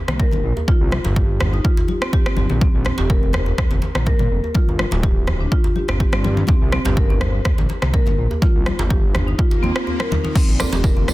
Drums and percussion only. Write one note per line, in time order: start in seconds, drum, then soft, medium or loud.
0.08 cross-stick medium
0.08 low conga loud
0.20 kick loud
0.31 muted conga soft
0.31 djembe tone medium
0.31 high conga medium
0.31 low conga medium
0.57 djembe tone medium
0.68 kick loud
0.68 muted conga soft
0.68 high conga medium
0.91 cross-stick medium
0.91 djembe tone medium
0.91 high conga medium
1.05 djembe slap medium
1.05 muted conga soft
1.05 high conga medium
1.16 kick loud
1.16 djembe tone medium
1.40 cross-stick medium
1.40 muted conga soft
1.40 high conga medium
1.40 djembe bass medium
1.40 low conga medium
1.53 djembe tone medium
1.65 kick loud
1.77 djembe slap medium
1.77 djembe tone medium
1.88 muted conga soft
1.88 high conga medium
2.02 cross-stick medium
2.13 kick loud
2.13 djembe tone medium
2.26 cross-stick medium
2.26 muted conga soft
2.37 high conga loud
2.37 djembe tone medium
2.37 low conga medium
2.50 low conga medium
2.61 kick loud
2.61 muted conga soft
2.61 high conga medium
2.61 djembe tone medium
2.85 cross-stick medium
2.85 high conga medium
2.85 djembe tone medium
2.98 djembe slap loud
2.98 muted conga soft
3.10 kick loud
3.23 djembe tone medium
3.33 cross-stick medium
3.33 muted conga soft
3.33 high conga medium
3.33 djembe bass medium
3.46 djembe tone medium
3.58 kick loud
3.58 cross-stick medium
3.58 high conga medium
3.58 djembe bass medium
3.71 djembe slap medium
3.71 low conga medium
3.82 djembe slap medium
3.82 muted conga soft
3.82 djembe tone medium
3.95 cross-stick medium
3.95 low conga loud
4.06 kick loud
4.06 djembe tone medium
4.19 muted conga soft
4.19 high conga medium
4.19 low conga medium
4.44 djembe tone medium
4.54 kick loud
4.54 muted conga medium
4.54 high conga medium
4.69 djembe tone medium
4.79 cross-stick medium
4.79 high conga medium
4.91 djembe slap medium
4.91 muted conga soft
4.91 high conga soft
5.03 kick loud
5.03 djembe tone medium
5.27 cross-stick medium
5.27 muted conga soft
5.27 djembe tone medium
5.27 high conga medium
5.27 low conga medium
5.27 djembe bass medium
5.52 kick loud
5.64 djembe slap medium
5.64 djembe tone medium
5.76 muted conga soft
5.76 high conga medium
5.88 cross-stick medium
5.88 djembe tone medium
6.00 kick loud
6.13 cross-stick medium
6.13 muted conga soft
6.24 djembe tone medium
6.24 high conga loud
6.24 low conga medium
6.37 low conga medium
6.47 kick loud
6.47 muted conga soft
6.47 high conga medium
6.47 djembe tone medium
6.72 cross-stick medium
6.72 high conga medium
6.85 muted conga soft
6.85 djembe slap medium
6.85 djembe tone medium
6.97 kick loud
7.10 djembe tone medium
7.21 cross-stick medium
7.21 muted conga soft
7.21 high conga medium
7.21 djembe bass medium
7.45 kick loud
7.45 cross-stick medium
7.45 djembe tone medium
7.45 high conga medium
7.45 djembe bass medium
7.58 djembe slap medium
7.58 low conga medium
7.69 djembe slap medium
7.69 muted conga soft
7.69 djembe tone medium
7.82 cross-stick medium
7.82 low conga loud
7.94 kick loud
8.06 muted conga soft
8.06 djembe tone medium
8.06 high conga medium
8.06 low conga medium
8.31 djembe tone medium
8.42 kick loud
8.42 muted conga medium
8.42 high conga medium
8.66 cross-stick medium
8.66 djembe tone medium
8.66 high conga medium
8.79 djembe slap loud
8.79 muted conga soft
8.79 high conga medium
8.90 kick loud
8.90 djembe tone medium
9.15 cross-stick medium
9.15 muted conga medium
9.15 high conga medium
9.15 djembe bass medium
9.15 low conga medium
9.28 djembe tone medium
9.39 kick loud
9.51 djembe slap medium
9.51 djembe tone medium
9.64 muted conga soft
9.64 high conga medium
9.76 cross-stick medium
9.87 djembe tone medium
10.00 cross-stick medium
10.00 muted conga soft
10.12 djembe slap medium
10.12 high conga medium
10.12 djembe tone medium
10.12 low conga loud
10.25 low conga medium
10.36 kick loud
10.36 crash medium
10.36 tambourine soft
10.36 muted conga medium
10.36 high conga medium
10.36 djembe tone medium
10.60 cross-stick medium
10.60 tambourine medium
10.60 djembe tone medium
10.60 high conga medium
10.73 tambourine soft
10.73 djembe slap loud
10.73 muted conga soft
10.84 kick loud
10.84 tambourine soft
10.97 djembe tone medium
11.08 cross-stick medium
11.08 tambourine medium
11.08 muted conga soft
11.08 high conga medium
11.08 djembe bass medium